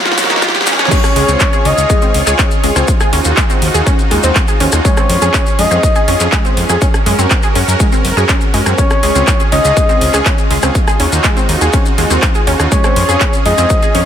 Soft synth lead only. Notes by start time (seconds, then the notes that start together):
0.91 C#5
1.65 D#5
4.85 C#5
5.59 D#5
8.78 C#5
9.52 D#5
12.72 C#5
13.46 D#5